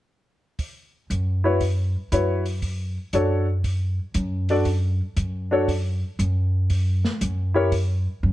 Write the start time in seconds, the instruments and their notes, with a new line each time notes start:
0.59 kick, open hi-hat
1.10 upright bass F#2, closed hi-hat
1.44 grand piano E4 F#4 B4 C#5
1.61 kick, open hi-hat
2.12 upright bass F#2, grand piano E4 F#4 B4 C#5, closed hi-hat
2.46 open hi-hat
2.62 kick, open hi-hat
3.13 upright bass F#2, grand piano D4 F#4 A4 C#5, closed hi-hat
3.64 kick, open hi-hat
4.14 upright bass F#2, closed hi-hat
4.49 grand piano D4 F#4 A4 D5, open hi-hat
4.65 kick, open hi-hat
5.16 upright bass F#2, closed hi-hat
5.51 grand piano D4 F#4 A4 C#5
5.68 kick, open hi-hat
6.19 upright bass F#2, closed hi-hat
6.70 kick, open hi-hat
7.05 snare
7.21 upright bass F#2, closed hi-hat
7.54 grand piano E4 G4 A#4 C#5
7.72 kick, open hi-hat
8.23 upright bass F#2